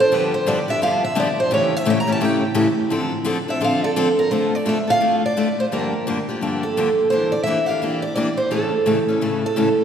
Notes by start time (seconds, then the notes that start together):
0.00 C5
0.12 G2 D3 F3 B3 D4 G4 B4
0.34 C5
0.46 G2 D3 F3 B3 D4 G4 D5
0.68 F3 B3 D4 G4 E5
0.82 G2 D3 F3 B3 D4 G4 F5
1.04 E5
1.15 G2 D3 F3 B3 D4 G4
1.20 D5
1.40 C5
1.51 A2 C#3 E3 A3 C#4 G4 C#5
1.76 E5
1.85 A2 C#3 E3 A3 C#4 G4
1.90 G5
2.00 A#5
2.07 E3 A3 C#4 G4
2.12 A5
2.20 A2 C#3 E3 A3 C#4 G4
2.24 G5
2.55 A2 C#3 E3 A3 C#4 G4
2.90 D3 F3 C4 D4 A4
3.25 D3 F3 C4 D4 A4
3.48 C4 D4 A4 E5
3.60 D3 F3 C4 D4 A4 F5
3.84 A4 D5
3.96 D3 F3 C4 D4 A4
4.19 A#4
4.31 D3 A3 D4 F4 A4 C5
4.55 D5
4.65 D3 A3 D4 F4 A4 E5
4.87 D4 F4 A4 F5
5.00 D3 A3 D4 F4 A4
5.26 D5
5.37 D3 A3 D4 F4 A4
5.60 C5
5.72 G2 D3 F3 A#3 D4 G4 A#4
6.07 G2 D3 F3 A#3 D4 G4
6.29 F3 A#3 D4 G4
6.41 G2 D3 F3 A#3 D4 G4
6.63 A4
6.77 G2 D3 F3 A#3 D4 G4
7.10 E3 A#3 D4 G4 C5
7.32 D5
7.43 E3 A#3 E5
7.48 D4 G4
7.66 D4 G4 F5
7.71 A#3
7.82 E3 A#3 D4 G4
8.02 D5
8.15 E3 A#3 D4 G4 D5
8.37 C5
8.51 A2 C#3 E3 A3 C#4 A4
8.86 A2 C#3 E3 A3 C#4 A4
8.93 G4
9.08 E3 A3 C#4 A4
9.21 A2 C#3 E3 A3 C#4 A4
9.46 A4
9.56 A2 C#3 E3 A3 C#4 A4